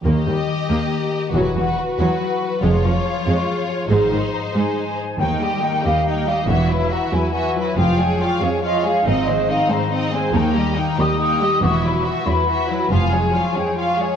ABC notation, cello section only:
X:1
M:6/8
L:1/8
Q:3/8=93
K:Ebmix
V:1 name="Cello section" clef=bass
E,, E,, z E,, z2 | =E,, E,, z E,, z2 | F,, F,, z F,, z2 | A,, A,, z A,, z2 |
E,,3 E,,3 | =E,,3 E,,3 | F,,3 F,,3 | A,,3 A,,3 |
E,,3 E,,3 | =E,,3 E,,3 | F,,3 F,,3 |]